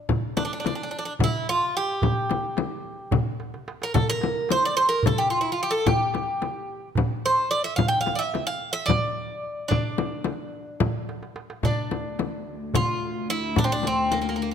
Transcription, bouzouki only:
0.37 D4
0.45 D4
0.53 D4
0.60 D4
0.67 D4
0.75 D4
0.83 D4
0.91 D4
0.99 D4
1.05 D4
1.24 E4
1.49 F4
1.77 G4
3.83 A#4
3.94 A4
4.10 A#4
4.52 C5
4.65 D5
4.77 C5
4.89 A#4
5.07 A4
5.18 G4
5.30 F4
5.41 E4
5.52 F4
5.63 G4
5.71 A4
5.87 G4
7.26 C5
7.51 D5
7.64 E5
7.76 F5
7.88 G5
8.01 F5
8.15 D5 E5
8.47 F5
8.73 E5
8.86 D5
9.68 D4
11.65 D4
12.75 F4
13.30 E4
13.58 D4
13.64 C4
13.72 D4
13.87 C4
14.12 A#3
14.21 A#3
14.29 A#3
14.36 A#3
14.42 A#3

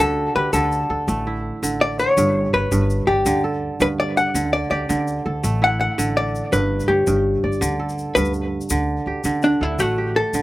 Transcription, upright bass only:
0.00 D2
0.35 D2
0.53 D2
0.90 D2
1.08 A1
1.62 A1
2.17 G1
2.53 G1
2.71 G1
3.08 G1
3.25 D2
3.80 D2
4.34 D2
4.71 D2
4.89 D2
5.26 D2
5.44 A1
5.98 A1
6.53 G1
6.89 G1
7.07 G1
7.44 G1
7.61 D2
8.16 D2
8.70 D2
9.06 D2
9.24 D2
9.61 D2
9.79 A1
10.33 A1

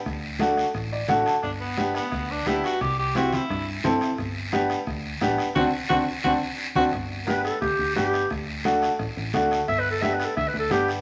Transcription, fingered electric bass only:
0.06 D2
0.74 A1
1.08 A1
1.43 G1
2.12 D2
2.46 D2
2.81 C2
3.50 G2
3.84 G2
4.19 G1
4.87 D2
5.21 A1
5.56 D2
5.90 D2
6.24 D2
6.76 D2
6.93 G1
7.62 D2
7.79 D2
7.96 G1
8.31 D2
8.99 A1
9.17 A1
9.34 D2
9.68 G1
10.37 D2
10.54 D2
10.71 G1

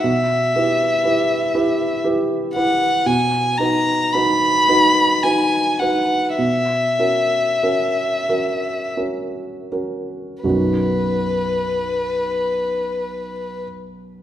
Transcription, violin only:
0.06 E5
2.54 F#5
3.06 G#5
3.57 A#5
4.13 B5
5.23 G#5
5.79 F#5
6.37 E5
10.44 B4

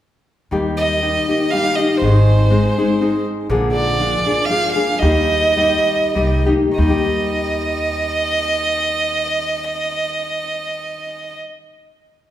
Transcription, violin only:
0.77 D#5
1.51 F5
1.76 D#5
1.98 C5
3.73 D5
4.45 F5
4.72 F5
4.99 D#5
6.79 D#5

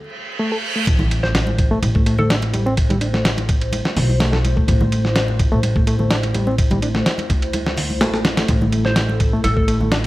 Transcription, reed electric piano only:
0.39 A3
0.52 A4
0.76 A3
1.71 A3
1.95 A3
2.06 A3
2.19 A3
2.30 D4
2.53 G3
2.66 C4
2.90 G3
3.01 D4
3.13 A3
4.20 A3
4.32 A4
4.56 A3
5.52 A3
5.76 A3
5.87 A3
6.00 A3
6.11 D4
6.34 G3
6.47 C4
6.71 G3
6.83 D4
6.95 A3
8.01 A3
8.14 A4
8.38 A3
9.33 A3
9.57 A3
9.68 A3
9.81 A3
9.92 D4

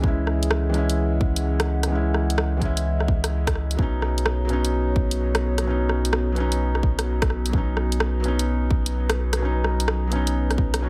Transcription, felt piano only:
Already playing: G#3 C#4 E4
0.00 E3 G#3
0.05 C#4 E4
0.70 E3 G#3
0.75 C#4 E4
1.87 E3 G#3
1.93 C#4 E4
2.57 E3 G#3
2.63 C#4 E4
3.74 F#3 B3
3.80 C#4 D#4
4.45 F#3 B3
4.50 C#4 D#4
5.62 F#3 B3
5.67 C#4 D#4
6.32 F#3 B3
6.38 C#4 D#4
7.49 F#3 B3
7.55 C#4 D#4
8.20 F#3 B3
8.25 C#4 D#4
9.37 F#3 B3
9.42 C#4 D#4
10.07 F#3 B3
10.13 C#4 D#4
10.80 F#3 B3 C#4
10.84 F#4

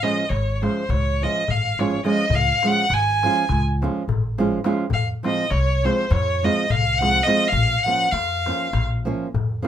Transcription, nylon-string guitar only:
0.03 F3 G#3 C#4 F4
0.62 F3 G#3 C#4 F4
1.22 F3 G#3 C#4 F4
1.79 F3 G#3 C#4 F4
2.05 F3 G#3 C#4 F4
2.63 F3 G#3 C#4 F4
3.23 F3 G#3 C#4 F4
3.82 F3 G#3 C#4 F4
4.38 F3 G#3 C#4 F4
4.64 F3 G#3 C#4 F4
5.23 F3 G#3 C4 F4
5.83 F3 G#3 C4 F4
6.43 F3 G#3 C4 F4
7.01 F3 G#3 C4 F4
7.26 F3 G#3 C4 F4
7.86 F3 A#3 C#4 F4
8.47 F3 A#3 C#4 F4
9.05 F3 A#3 C#4 F4
9.62 F3 A#3 C#4 F4

